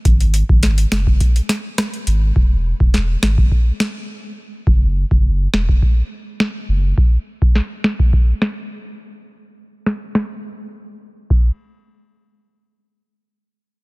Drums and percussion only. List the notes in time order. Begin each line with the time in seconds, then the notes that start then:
0.05 kick, closed hi-hat
0.20 closed hi-hat
0.34 closed hi-hat
0.49 kick
0.63 snare, closed hi-hat
0.78 closed hi-hat
0.92 snare, closed hi-hat
1.07 kick
1.20 kick, closed hi-hat
1.36 closed hi-hat
1.49 snare, closed hi-hat
1.78 cross-stick, snare, closed hi-hat
1.94 closed hi-hat
2.07 closed hi-hat
2.36 kick
2.80 kick
2.94 snare
3.23 snare
3.38 kick
3.52 kick
3.80 snare
4.67 kick
5.11 kick
5.54 snare
5.69 kick
5.82 kick
6.40 snare
6.98 kick
7.42 kick
7.55 snare
7.84 snare
7.99 kick
8.13 kick
8.42 snare
9.86 snare
10.15 snare
11.30 kick, crash